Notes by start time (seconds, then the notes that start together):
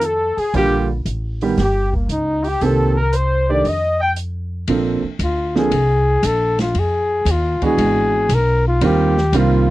Already playing: F2
0.01 A4, closed hi-hat
0.06 A4
0.37 G#4, muted upright bass stroke, open hi-hat
0.54 A#1 D3 G3 A#3 F4 G4, open hi-hat
0.58 G4
1.05 A1, closed hi-hat
1.41 D#3 G3 B3 G4, open hi-hat
1.57 G1 G4, snare, open hi-hat
1.62 G4
1.92 A#3, kick
2.09 C#2 D#4, closed hi-hat
2.44 G4, open hi-hat
2.49 G4
2.61 C2 D#3 A#3 C4 G4 A4, open hi-hat
2.66 A4
2.96 A#4
3.01 A#4
3.13 C5, closed hi-hat
3.49 D#3 A3 D4 G4 D5
3.64 F2 D#5, open hi-hat
3.69 D#5
4.00 G5
4.16 closed hi-hat
4.67 A#1 F3 A#3 C4 D4 A4, ride
5.03 muted upright bass stroke
5.19 D2, hi-hat pedal, ride
5.24 F4
5.56 F3 A#3 C4 D4 G#4 A4, snare
5.71 C2, ride
6.23 A#1 A4, hi-hat pedal, ride
6.59 F4, snare, ride
6.75 F2, ride
6.79 G#4
7.25 D#2, hi-hat pedal, ride
7.31 F4
7.62 E3 G#3 B3 D4 F#4 G#4, muted upright bass stroke, kick, ride
7.78 G#1, ride
8.29 B1, hi-hat pedal, ride
8.34 A#4
8.68 F4
8.81 D#2 D#3 G3 A#3 C4 F4, ride
8.85 G4
9.18 snare
9.33 C2 D#3 G3 A#3 C4 F4, hi-hat pedal, ride
9.37 F4